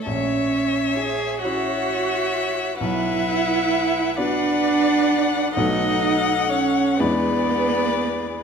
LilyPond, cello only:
\new Staff \with { instrumentName = "Cello" } { \time 6/8 \key b \dorian \tempo 4. = 44 cis'4 gis'8 fis'4. | e'4. d'4. | dis'4 cis'8 b4. | }